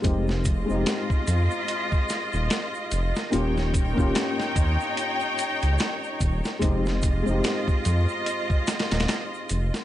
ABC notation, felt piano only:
X:1
M:4/4
L:1/16
Q:"Swing 16ths" 1/4=73
K:Fm
V:1 name="Felt piano"
[A,CEG]3 [A,CEG]12- [A,CEG] | [B,DFG]3 [B,DFG]12- [B,DFG] | [A,CEG]3 [A,CEG]12- [A,CEG] |]